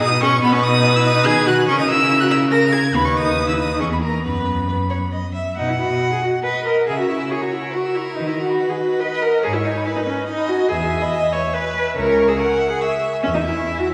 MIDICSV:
0, 0, Header, 1, 5, 480
1, 0, Start_track
1, 0, Key_signature, 5, "major"
1, 0, Tempo, 421348
1, 482, Time_signature, 3, 2, 24, 8
1, 3841, Tempo, 437637
1, 7681, Tempo, 424929
1, 15663, End_track
2, 0, Start_track
2, 0, Title_t, "Violin"
2, 0, Program_c, 0, 40
2, 19, Note_on_c, 0, 87, 127
2, 247, Note_off_c, 0, 87, 0
2, 262, Note_on_c, 0, 85, 112
2, 487, Note_off_c, 0, 85, 0
2, 495, Note_on_c, 0, 83, 112
2, 607, Note_off_c, 0, 83, 0
2, 624, Note_on_c, 0, 85, 101
2, 723, Note_on_c, 0, 87, 127
2, 740, Note_off_c, 0, 85, 0
2, 1093, Note_on_c, 0, 88, 117
2, 1110, Note_off_c, 0, 87, 0
2, 1199, Note_off_c, 0, 88, 0
2, 1206, Note_on_c, 0, 87, 110
2, 1433, Note_on_c, 0, 92, 124
2, 1450, Note_off_c, 0, 87, 0
2, 1684, Note_on_c, 0, 90, 102
2, 1701, Note_off_c, 0, 92, 0
2, 1907, Note_off_c, 0, 90, 0
2, 1914, Note_on_c, 0, 85, 100
2, 2035, Note_off_c, 0, 85, 0
2, 2040, Note_on_c, 0, 87, 107
2, 2158, Note_off_c, 0, 87, 0
2, 2168, Note_on_c, 0, 88, 115
2, 2504, Note_off_c, 0, 88, 0
2, 2511, Note_on_c, 0, 90, 103
2, 2560, Note_off_c, 0, 90, 0
2, 2629, Note_on_c, 0, 88, 106
2, 2720, Note_off_c, 0, 88, 0
2, 2866, Note_on_c, 0, 94, 112
2, 3104, Note_on_c, 0, 92, 99
2, 3121, Note_off_c, 0, 94, 0
2, 3363, Note_on_c, 0, 83, 107
2, 3380, Note_off_c, 0, 92, 0
2, 3474, Note_on_c, 0, 85, 90
2, 3491, Note_off_c, 0, 83, 0
2, 3606, Note_on_c, 0, 87, 107
2, 3623, Note_off_c, 0, 85, 0
2, 3962, Note_off_c, 0, 87, 0
2, 3971, Note_on_c, 0, 88, 79
2, 4081, Note_off_c, 0, 88, 0
2, 4087, Note_on_c, 0, 87, 81
2, 4315, Note_off_c, 0, 87, 0
2, 4321, Note_on_c, 0, 85, 87
2, 4368, Note_off_c, 0, 85, 0
2, 4453, Note_on_c, 0, 83, 64
2, 4497, Note_off_c, 0, 83, 0
2, 4570, Note_on_c, 0, 82, 73
2, 4792, Note_off_c, 0, 82, 0
2, 4799, Note_on_c, 0, 83, 68
2, 5751, Note_off_c, 0, 83, 0
2, 6267, Note_on_c, 0, 75, 50
2, 6374, Note_on_c, 0, 78, 52
2, 6391, Note_off_c, 0, 75, 0
2, 6494, Note_on_c, 0, 83, 54
2, 6511, Note_off_c, 0, 78, 0
2, 6608, Note_on_c, 0, 87, 48
2, 6624, Note_off_c, 0, 83, 0
2, 6735, Note_on_c, 0, 83, 52
2, 6752, Note_off_c, 0, 87, 0
2, 6844, Note_on_c, 0, 78, 47
2, 6861, Note_off_c, 0, 83, 0
2, 6971, Note_on_c, 0, 75, 43
2, 6988, Note_off_c, 0, 78, 0
2, 7072, Note_on_c, 0, 78, 48
2, 7089, Note_off_c, 0, 75, 0
2, 7200, Note_on_c, 0, 83, 55
2, 7217, Note_off_c, 0, 78, 0
2, 7317, Note_on_c, 0, 87, 49
2, 7334, Note_off_c, 0, 83, 0
2, 7444, Note_on_c, 0, 83, 49
2, 7461, Note_off_c, 0, 87, 0
2, 7558, Note_on_c, 0, 78, 47
2, 7574, Note_off_c, 0, 83, 0
2, 7670, Note_off_c, 0, 78, 0
2, 7676, Note_on_c, 0, 78, 51
2, 7805, Note_on_c, 0, 82, 49
2, 7822, Note_off_c, 0, 78, 0
2, 7918, Note_on_c, 0, 85, 57
2, 7935, Note_off_c, 0, 82, 0
2, 8037, Note_on_c, 0, 88, 50
2, 8054, Note_off_c, 0, 85, 0
2, 8166, Note_on_c, 0, 85, 51
2, 8183, Note_off_c, 0, 88, 0
2, 8287, Note_on_c, 0, 82, 51
2, 8304, Note_off_c, 0, 85, 0
2, 8410, Note_on_c, 0, 78, 46
2, 8427, Note_off_c, 0, 82, 0
2, 8532, Note_on_c, 0, 82, 46
2, 8548, Note_off_c, 0, 78, 0
2, 8659, Note_on_c, 0, 85, 53
2, 8676, Note_off_c, 0, 82, 0
2, 8789, Note_on_c, 0, 88, 49
2, 8806, Note_off_c, 0, 85, 0
2, 8917, Note_on_c, 0, 85, 45
2, 8934, Note_off_c, 0, 88, 0
2, 9034, Note_on_c, 0, 82, 47
2, 9051, Note_off_c, 0, 85, 0
2, 9134, Note_off_c, 0, 82, 0
2, 9141, Note_on_c, 0, 71, 52
2, 9271, Note_on_c, 0, 75, 51
2, 9288, Note_off_c, 0, 71, 0
2, 9406, Note_on_c, 0, 78, 56
2, 9423, Note_off_c, 0, 75, 0
2, 9509, Note_on_c, 0, 83, 50
2, 9526, Note_off_c, 0, 78, 0
2, 9632, Note_on_c, 0, 78, 49
2, 9649, Note_off_c, 0, 83, 0
2, 9737, Note_on_c, 0, 75, 54
2, 9754, Note_off_c, 0, 78, 0
2, 9877, Note_on_c, 0, 71, 51
2, 9894, Note_off_c, 0, 75, 0
2, 9989, Note_on_c, 0, 75, 49
2, 10006, Note_off_c, 0, 71, 0
2, 10103, Note_on_c, 0, 78, 53
2, 10120, Note_off_c, 0, 75, 0
2, 10217, Note_on_c, 0, 83, 52
2, 10234, Note_off_c, 0, 78, 0
2, 10337, Note_on_c, 0, 78, 53
2, 10354, Note_off_c, 0, 83, 0
2, 10458, Note_on_c, 0, 75, 50
2, 10475, Note_off_c, 0, 78, 0
2, 10555, Note_off_c, 0, 75, 0
2, 10562, Note_on_c, 0, 71, 53
2, 10696, Note_on_c, 0, 75, 60
2, 10713, Note_off_c, 0, 71, 0
2, 10824, Note_on_c, 0, 80, 66
2, 10841, Note_off_c, 0, 75, 0
2, 10946, Note_on_c, 0, 83, 48
2, 10963, Note_off_c, 0, 80, 0
2, 11035, Note_on_c, 0, 80, 61
2, 11052, Note_off_c, 0, 83, 0
2, 11161, Note_on_c, 0, 75, 56
2, 11178, Note_off_c, 0, 80, 0
2, 11292, Note_on_c, 0, 71, 54
2, 11309, Note_off_c, 0, 75, 0
2, 11405, Note_on_c, 0, 75, 58
2, 11422, Note_off_c, 0, 71, 0
2, 11529, Note_on_c, 0, 80, 54
2, 11546, Note_off_c, 0, 75, 0
2, 11642, Note_on_c, 0, 83, 55
2, 11658, Note_off_c, 0, 80, 0
2, 11776, Note_on_c, 0, 80, 59
2, 11793, Note_off_c, 0, 83, 0
2, 11882, Note_on_c, 0, 75, 59
2, 11899, Note_off_c, 0, 80, 0
2, 11996, Note_off_c, 0, 75, 0
2, 12003, Note_on_c, 0, 71, 62
2, 12116, Note_on_c, 0, 76, 62
2, 12133, Note_off_c, 0, 71, 0
2, 12236, Note_on_c, 0, 80, 61
2, 12253, Note_off_c, 0, 76, 0
2, 12358, Note_on_c, 0, 83, 53
2, 12375, Note_off_c, 0, 80, 0
2, 12477, Note_on_c, 0, 80, 65
2, 12494, Note_off_c, 0, 83, 0
2, 12602, Note_on_c, 0, 76, 53
2, 12619, Note_off_c, 0, 80, 0
2, 12716, Note_on_c, 0, 71, 59
2, 12733, Note_off_c, 0, 76, 0
2, 12829, Note_on_c, 0, 76, 54
2, 12846, Note_off_c, 0, 71, 0
2, 12948, Note_on_c, 0, 80, 59
2, 12965, Note_off_c, 0, 76, 0
2, 13078, Note_on_c, 0, 83, 53
2, 13095, Note_off_c, 0, 80, 0
2, 13195, Note_on_c, 0, 80, 54
2, 13211, Note_off_c, 0, 83, 0
2, 13309, Note_on_c, 0, 76, 61
2, 13326, Note_off_c, 0, 80, 0
2, 13431, Note_off_c, 0, 76, 0
2, 13436, Note_on_c, 0, 76, 64
2, 13535, Note_on_c, 0, 80, 57
2, 13552, Note_off_c, 0, 76, 0
2, 13659, Note_on_c, 0, 85, 65
2, 13676, Note_off_c, 0, 80, 0
2, 13783, Note_on_c, 0, 88, 55
2, 13800, Note_off_c, 0, 85, 0
2, 13901, Note_on_c, 0, 85, 65
2, 13918, Note_off_c, 0, 88, 0
2, 14030, Note_on_c, 0, 80, 56
2, 14047, Note_off_c, 0, 85, 0
2, 14132, Note_on_c, 0, 76, 55
2, 14149, Note_off_c, 0, 80, 0
2, 14260, Note_on_c, 0, 80, 54
2, 14277, Note_off_c, 0, 76, 0
2, 14379, Note_on_c, 0, 85, 61
2, 14396, Note_off_c, 0, 80, 0
2, 14504, Note_on_c, 0, 88, 55
2, 14521, Note_off_c, 0, 85, 0
2, 14617, Note_on_c, 0, 85, 54
2, 14634, Note_off_c, 0, 88, 0
2, 14751, Note_on_c, 0, 80, 59
2, 14768, Note_off_c, 0, 85, 0
2, 14855, Note_off_c, 0, 80, 0
2, 14862, Note_on_c, 0, 73, 57
2, 14995, Note_on_c, 0, 76, 57
2, 15012, Note_off_c, 0, 73, 0
2, 15121, Note_on_c, 0, 80, 56
2, 15138, Note_off_c, 0, 76, 0
2, 15239, Note_on_c, 0, 85, 51
2, 15256, Note_off_c, 0, 80, 0
2, 15362, Note_on_c, 0, 80, 56
2, 15378, Note_off_c, 0, 85, 0
2, 15478, Note_on_c, 0, 76, 51
2, 15495, Note_off_c, 0, 80, 0
2, 15613, Note_on_c, 0, 73, 44
2, 15630, Note_off_c, 0, 76, 0
2, 15663, Note_off_c, 0, 73, 0
2, 15663, End_track
3, 0, Start_track
3, 0, Title_t, "Violin"
3, 0, Program_c, 1, 40
3, 241, Note_on_c, 1, 68, 79
3, 332, Note_off_c, 1, 68, 0
3, 490, Note_on_c, 1, 71, 94
3, 1876, Note_off_c, 1, 71, 0
3, 1921, Note_on_c, 1, 70, 81
3, 2860, Note_off_c, 1, 70, 0
3, 2880, Note_on_c, 1, 70, 76
3, 3353, Note_off_c, 1, 70, 0
3, 3360, Note_on_c, 1, 71, 65
3, 4302, Note_on_c, 1, 68, 56
3, 4319, Note_off_c, 1, 71, 0
3, 4543, Note_on_c, 1, 70, 50
3, 4559, Note_off_c, 1, 68, 0
3, 4785, Note_off_c, 1, 70, 0
3, 4791, Note_on_c, 1, 71, 51
3, 5224, Note_off_c, 1, 71, 0
3, 5277, Note_on_c, 1, 71, 48
3, 5365, Note_off_c, 1, 71, 0
3, 5513, Note_on_c, 1, 73, 63
3, 5601, Note_off_c, 1, 73, 0
3, 5756, Note_on_c, 1, 75, 69
3, 5995, Note_off_c, 1, 75, 0
3, 6002, Note_on_c, 1, 76, 61
3, 6242, Note_off_c, 1, 76, 0
3, 6254, Note_on_c, 1, 78, 74
3, 7165, Note_off_c, 1, 78, 0
3, 7213, Note_on_c, 1, 75, 58
3, 7674, Note_off_c, 1, 75, 0
3, 7680, Note_on_c, 1, 76, 60
3, 8149, Note_off_c, 1, 76, 0
3, 8156, Note_on_c, 1, 73, 57
3, 8644, Note_on_c, 1, 70, 62
3, 8661, Note_off_c, 1, 73, 0
3, 9607, Note_off_c, 1, 70, 0
3, 9614, Note_on_c, 1, 71, 59
3, 10092, Note_on_c, 1, 75, 71
3, 10109, Note_off_c, 1, 71, 0
3, 10549, Note_off_c, 1, 75, 0
3, 10555, Note_on_c, 1, 73, 66
3, 11047, Note_on_c, 1, 71, 65
3, 11064, Note_off_c, 1, 73, 0
3, 11509, Note_off_c, 1, 71, 0
3, 11516, Note_on_c, 1, 75, 71
3, 11991, Note_on_c, 1, 76, 71
3, 12008, Note_off_c, 1, 75, 0
3, 12950, Note_off_c, 1, 76, 0
3, 12966, Note_on_c, 1, 71, 70
3, 13428, Note_off_c, 1, 71, 0
3, 13437, Note_on_c, 1, 73, 74
3, 13903, Note_off_c, 1, 73, 0
3, 13911, Note_on_c, 1, 78, 78
3, 14390, Note_on_c, 1, 76, 66
3, 14407, Note_off_c, 1, 78, 0
3, 14853, Note_off_c, 1, 76, 0
3, 14860, Note_on_c, 1, 76, 70
3, 15663, Note_off_c, 1, 76, 0
3, 15663, End_track
4, 0, Start_track
4, 0, Title_t, "Viola"
4, 0, Program_c, 2, 41
4, 248, Note_on_c, 2, 61, 104
4, 469, Note_off_c, 2, 61, 0
4, 475, Note_on_c, 2, 59, 123
4, 600, Note_on_c, 2, 61, 87
4, 617, Note_off_c, 2, 59, 0
4, 704, Note_off_c, 2, 61, 0
4, 711, Note_on_c, 2, 63, 98
4, 1068, Note_off_c, 2, 63, 0
4, 1076, Note_on_c, 2, 64, 94
4, 1200, Note_on_c, 2, 63, 101
4, 1217, Note_off_c, 2, 64, 0
4, 1429, Note_on_c, 2, 68, 121
4, 1446, Note_off_c, 2, 63, 0
4, 1676, Note_on_c, 2, 66, 100
4, 1693, Note_off_c, 2, 68, 0
4, 1911, Note_off_c, 2, 66, 0
4, 1917, Note_on_c, 2, 61, 111
4, 2036, Note_off_c, 2, 61, 0
4, 2042, Note_on_c, 2, 63, 88
4, 2090, Note_off_c, 2, 63, 0
4, 2160, Note_on_c, 2, 64, 94
4, 2512, Note_off_c, 2, 64, 0
4, 2522, Note_on_c, 2, 66, 84
4, 2569, Note_off_c, 2, 66, 0
4, 2626, Note_on_c, 2, 64, 89
4, 2717, Note_off_c, 2, 64, 0
4, 2860, Note_on_c, 2, 70, 106
4, 2951, Note_off_c, 2, 70, 0
4, 3096, Note_on_c, 2, 68, 90
4, 3187, Note_off_c, 2, 68, 0
4, 3344, Note_on_c, 2, 59, 82
4, 3395, Note_off_c, 2, 59, 0
4, 3458, Note_on_c, 2, 61, 70
4, 3578, Note_off_c, 2, 61, 0
4, 3585, Note_on_c, 2, 63, 86
4, 3941, Note_off_c, 2, 63, 0
4, 3947, Note_on_c, 2, 64, 67
4, 4068, Note_on_c, 2, 63, 74
4, 4085, Note_off_c, 2, 64, 0
4, 4307, Note_on_c, 2, 61, 75
4, 4323, Note_off_c, 2, 63, 0
4, 4425, Note_on_c, 2, 59, 58
4, 4442, Note_off_c, 2, 61, 0
4, 4539, Note_on_c, 2, 58, 61
4, 4555, Note_off_c, 2, 59, 0
4, 4778, Note_off_c, 2, 58, 0
4, 4784, Note_on_c, 2, 59, 60
4, 5744, Note_off_c, 2, 59, 0
4, 6260, Note_on_c, 2, 63, 84
4, 6387, Note_on_c, 2, 64, 63
4, 6403, Note_off_c, 2, 63, 0
4, 6496, Note_off_c, 2, 64, 0
4, 6502, Note_on_c, 2, 66, 74
4, 6851, Note_off_c, 2, 66, 0
4, 6860, Note_on_c, 2, 68, 70
4, 6967, Note_off_c, 2, 68, 0
4, 6973, Note_on_c, 2, 66, 71
4, 7061, Note_off_c, 2, 66, 0
4, 7201, Note_on_c, 2, 71, 89
4, 7432, Note_off_c, 2, 71, 0
4, 7439, Note_on_c, 2, 70, 77
4, 7675, Note_off_c, 2, 70, 0
4, 7681, Note_on_c, 2, 68, 84
4, 7802, Note_off_c, 2, 68, 0
4, 7816, Note_on_c, 2, 66, 70
4, 7929, Note_off_c, 2, 66, 0
4, 7934, Note_on_c, 2, 64, 81
4, 8182, Note_on_c, 2, 68, 84
4, 8199, Note_off_c, 2, 64, 0
4, 8304, Note_on_c, 2, 66, 60
4, 8321, Note_off_c, 2, 68, 0
4, 8418, Note_on_c, 2, 64, 75
4, 8435, Note_off_c, 2, 66, 0
4, 8657, Note_on_c, 2, 66, 88
4, 8674, Note_off_c, 2, 64, 0
4, 8901, Note_on_c, 2, 64, 75
4, 8918, Note_off_c, 2, 66, 0
4, 9127, Note_on_c, 2, 63, 80
4, 9144, Note_off_c, 2, 64, 0
4, 9250, Note_off_c, 2, 63, 0
4, 9261, Note_on_c, 2, 64, 63
4, 9308, Note_off_c, 2, 64, 0
4, 9386, Note_on_c, 2, 66, 80
4, 9741, Note_on_c, 2, 68, 77
4, 9758, Note_off_c, 2, 66, 0
4, 9854, Note_off_c, 2, 68, 0
4, 9861, Note_on_c, 2, 66, 77
4, 10087, Note_on_c, 2, 71, 98
4, 10103, Note_off_c, 2, 66, 0
4, 10331, Note_on_c, 2, 70, 90
4, 10348, Note_off_c, 2, 71, 0
4, 10580, Note_on_c, 2, 68, 94
4, 10597, Note_off_c, 2, 70, 0
4, 10691, Note_on_c, 2, 64, 79
4, 10708, Note_off_c, 2, 68, 0
4, 10819, Note_on_c, 2, 63, 72
4, 10835, Note_off_c, 2, 64, 0
4, 11047, Note_off_c, 2, 63, 0
4, 11053, Note_on_c, 2, 64, 85
4, 11101, Note_off_c, 2, 64, 0
4, 11170, Note_on_c, 2, 63, 75
4, 11218, Note_off_c, 2, 63, 0
4, 11281, Note_on_c, 2, 61, 70
4, 11518, Note_off_c, 2, 61, 0
4, 11531, Note_on_c, 2, 63, 97
4, 11761, Note_on_c, 2, 66, 95
4, 11778, Note_off_c, 2, 63, 0
4, 11991, Note_on_c, 2, 68, 89
4, 12008, Note_off_c, 2, 66, 0
4, 12359, Note_on_c, 2, 75, 91
4, 12376, Note_off_c, 2, 68, 0
4, 12713, Note_on_c, 2, 73, 85
4, 12730, Note_off_c, 2, 75, 0
4, 12952, Note_on_c, 2, 71, 94
4, 12969, Note_off_c, 2, 73, 0
4, 13430, Note_off_c, 2, 71, 0
4, 13442, Note_on_c, 2, 70, 98
4, 13795, Note_on_c, 2, 68, 87
4, 13812, Note_off_c, 2, 70, 0
4, 13923, Note_on_c, 2, 70, 90
4, 13940, Note_off_c, 2, 68, 0
4, 14259, Note_off_c, 2, 70, 0
4, 14265, Note_on_c, 2, 68, 73
4, 14619, Note_off_c, 2, 68, 0
4, 14864, Note_on_c, 2, 61, 97
4, 14914, Note_off_c, 2, 61, 0
4, 14988, Note_on_c, 2, 63, 71
4, 15038, Note_off_c, 2, 63, 0
4, 15103, Note_on_c, 2, 64, 84
4, 15493, Note_on_c, 2, 66, 71
4, 15510, Note_off_c, 2, 64, 0
4, 15593, Note_on_c, 2, 64, 77
4, 15610, Note_off_c, 2, 66, 0
4, 15663, Note_off_c, 2, 64, 0
4, 15663, End_track
5, 0, Start_track
5, 0, Title_t, "Cello"
5, 0, Program_c, 3, 42
5, 1, Note_on_c, 3, 47, 96
5, 425, Note_off_c, 3, 47, 0
5, 484, Note_on_c, 3, 47, 106
5, 1442, Note_on_c, 3, 51, 87
5, 1459, Note_off_c, 3, 47, 0
5, 1918, Note_off_c, 3, 51, 0
5, 1925, Note_on_c, 3, 49, 90
5, 3336, Note_off_c, 3, 49, 0
5, 3363, Note_on_c, 3, 39, 82
5, 4318, Note_on_c, 3, 40, 70
5, 4335, Note_off_c, 3, 39, 0
5, 4802, Note_on_c, 3, 42, 63
5, 4819, Note_off_c, 3, 40, 0
5, 6032, Note_off_c, 3, 42, 0
5, 6262, Note_on_c, 3, 47, 70
5, 6657, Note_off_c, 3, 47, 0
5, 7684, Note_on_c, 3, 49, 66
5, 8088, Note_off_c, 3, 49, 0
5, 9143, Note_on_c, 3, 51, 64
5, 9540, Note_off_c, 3, 51, 0
5, 10581, Note_on_c, 3, 44, 63
5, 10976, Note_off_c, 3, 44, 0
5, 12010, Note_on_c, 3, 40, 72
5, 12406, Note_off_c, 3, 40, 0
5, 13435, Note_on_c, 3, 37, 74
5, 13832, Note_off_c, 3, 37, 0
5, 14876, Note_on_c, 3, 40, 68
5, 15280, Note_off_c, 3, 40, 0
5, 15663, End_track
0, 0, End_of_file